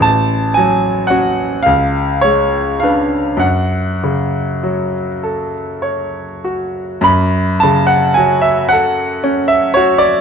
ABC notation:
X:1
M:6/8
L:1/16
Q:3/8=35
K:F#m
V:1 name="Grand piano"
a2 g2 f2 ^e2 c2 e2 | f6 z6 | b2 a f g e f3 e c d |]
V:2 name="Grand piano"
A,,,2 F,2 [CF]2 C,,2 G,2 [DB]2 | F,,2 C,2 F,2 A2 c2 F2 | F,,2 C,2 F,2 A2 C2 F2 |]